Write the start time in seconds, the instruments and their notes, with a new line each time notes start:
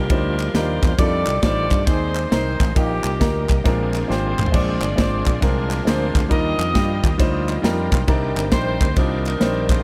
Already playing: tonewheel organ F3 G3 A#3 D4 F4, saxophone section D4 G4 A#4
0.10 fingered electric bass D2, grand piano G3 D4 D#4 F4 C5, kick, ride
0.39 clap, ride
0.54 fingered electric bass D#2, grand piano G3 D4 D#4 F4 A#4, saxophone section F4 G4 C5, snare, ride
0.83 fingered electric bass E2, kick, snare, clap, ride
0.97 fingered electric bass F2, tonewheel organ D#3 G3 A3 D4 F4, grand piano G3 D4 D#4 F4 A4, saxophone section G4 A4 D5, kick, ride
1.26 fingered electric bass C2, clap, ride
1.43 fingered electric bass A1, grand piano G3 D4 D#4 F4 C5, saxophone section G4 A4 D5, kick, snare, ride
1.71 fingered electric bass G2, kick, clap, ride
1.86 fingered electric bass D#2, grand piano D#3 C4 D#4 G#4, tonewheel organ G#3 C4 D4, saxophone section D#4 G#4 C5, kick, snare, ride
1.92 tonewheel organ D#4
2.15 clap, ride
2.30 fingered electric bass C2, grand piano C4 D#4 A#4, saxophone section D#4 G#4 C5, snare, ride
2.60 fingered electric bass A1, kick, snare, clap, ride
2.75 fingered electric bass A#1, grand piano A#2 A#3 D#4 G4, tonewheel organ G3 A#3 D#4, saxophone section A#3 D#4 G4, kick, ride
3.04 fingered electric bass C2, clap, ride
3.19 fingered electric bass D2, grand piano A#3 D#4 A#4, kick, snare, ride
3.49 fingered electric bass C2, kick, clap, ride
3.64 fingered electric bass A#1, grand piano A#2 G#3 C4 D4 F4 A#4, tonewheel organ F3 A#3 C4 D4 G#4, kick, snare, ride
3.94 clap, ride
4.08 fingered electric bass G#1, grand piano G#3 C4 D4 F4 G4, saxophone section F4 G#4 C5, snare
4.38 fingered electric bass A1, clap, mid tom
4.46 floor tom
4.52 fingered electric bass A#1, grand piano G#3 C4 D4 F4 C5, saxophone section F4 G#4 D5, kick, crash
4.81 fingered electric bass G1, clap, ride
4.96 fingered electric bass G#1, grand piano G#3 C4 D4 F4 C5, saxophone section F4 G#4 D5, kick, snare, ride
5.26 fingered electric bass A#1, kick, clap, ride
5.41 fingered electric bass C2, grand piano A#2 G#3 C4 D4 F4 A#4, saxophone section D4 F4 A#4, kick, snare, ride
5.71 clap, ride
5.85 fingered electric bass D2, grand piano G#3 C4 D4 F4 A#4, saxophone section F4 G#4 C5, snare, ride
6.15 fingered electric bass D2, kick, snare, clap, ride
6.29 fingered electric bass D#2, grand piano D#3 G3 D4 D#4 F4 A#4, tonewheel organ F3 A#3 D#4 F4 G4, saxophone section G4 A#4 D#5, kick, ride
6.58 fingered electric bass F2, clap, ride
6.74 fingered electric bass G2, grand piano G3 D4 D#4 F4 G4, kick, snare, ride
7.04 fingered electric bass D#2, kick, clap, ride
7.18 fingered electric bass D2, grand piano G3 D4 D#4 F4 C5, kick, snare, ride
7.48 grand piano D#5, clap, ride
7.62 fingered electric bass F2, grand piano G3 D4 D#4 F4 A#4 G5, snare, ride
7.92 fingered electric bass B1, grand piano C6, kick, snare, clap, ride
8.07 fingered electric bass C2, grand piano C3 G3 C4 D4 D#4 A#4, tonewheel organ D#3 A#3 C4 G4 D5, kick, ride
8.36 fingered electric bass G1, clap, ride
8.51 fingered electric bass A#1, grand piano G3 C4 D4 D#4 A#4, saxophone section D#4 G4 C5, kick, snare, ride
8.81 fingered electric bass D2, kick, clap, ride
8.96 fingered electric bass C2, grand piano G3 C4 D4 D#4 F4, saxophone section D4 D#4 A#4, kick, snare, ride
9.25 saxophone section D4 D#4 A#4, clap, ride
9.40 fingered electric bass A#1, grand piano G3 C4 D4 D#4 C5, snare, ride
9.69 saxophone section F4 G#4 C5, kick, snare, clap, ride